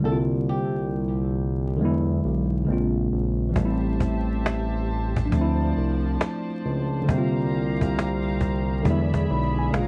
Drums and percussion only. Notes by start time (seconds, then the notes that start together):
3.56 cajon bass
4.00 cajon bass
4.46 cajon slap
4.88 cajon slap
5.16 cajon bass
5.32 cajon bass
5.77 cajon slap
6.21 cajon slap
6.50 cajon slap
6.66 cajon slap
7.09 cajon bass
7.54 cajon slap
7.81 cajon bass
7.99 cajon slap
8.41 cajon bass
8.85 cajon bass
9.14 cajon bass
9.30 cajon slap
9.74 cajon slap